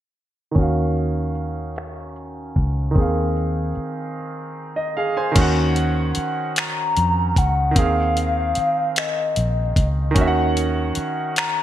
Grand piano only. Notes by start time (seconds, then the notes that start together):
0.51 D#3 C#4
0.58 F#4 F5
2.91 D#3 C4
2.98 G#4 F5
4.76 D#5
4.97 G#4 F5
5.17 C5 G#5
5.32 D#3 C#4
5.38 F#4 F#5
7.71 D#3 C4
7.78 G#4 F5
10.11 D#3 C#4
10.18 F#4 E5
10.28 F#5